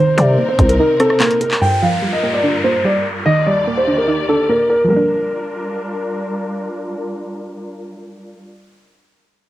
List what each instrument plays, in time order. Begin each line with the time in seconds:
Already playing: string section C3 C4 D#4 A#4, synth pluck D#3, grand piano C5, soft synth lead C5
0.17 808-style bass C3, synth pluck G3, grand piano D5, closed hi-hat
0.38 synth pluck A#3
0.49 grand piano C5
0.58 808-style bass C2, synth pluck C4, kick, closed hi-hat
0.69 grand piano A#4, closed hi-hat
0.79 synth pluck D#4, soft synth lead A#4
1.00 synth pluck C4, grand piano A4, soft synth lead C5, cross-stick, closed hi-hat
1.10 cross-stick
1.20 synth pluck A#3, grand piano A#4, clap, closed hi-hat
1.31 closed hi-hat
1.41 grand piano A#4, closed hi-hat
1.51 clap
1.61 synth pluck G2, string section G2 G3 F4 A#4, grand piano G5, downlifter
1.82 synth pluck F3, grand piano F5
2.02 synth pluck G3
2.13 grand piano D#5
2.23 synth pluck A#3
2.33 grand piano D5
2.44 synth pluck D4
2.64 synth pluck A#3, grand piano C5
2.85 synth pluck G3, grand piano D5
3.26 string section D#2 D#3 G4 D5, synth pluck D#3, grand piano D#5
3.46 synth pluck G3, grand piano D5
3.67 synth pluck A#3
3.77 grand piano C5
3.87 synth pluck D4
3.98 grand piano A#4
4.08 synth pluck D#4
4.29 synth pluck D4, grand piano A4
4.49 synth pluck A#3, grand piano A#4
4.69 grand piano A#4
4.84 synth pluck F3 G3
4.90 string section G3 D4 F4 A#4, synth pluck A#3, grand piano A#4
4.96 synth pluck D4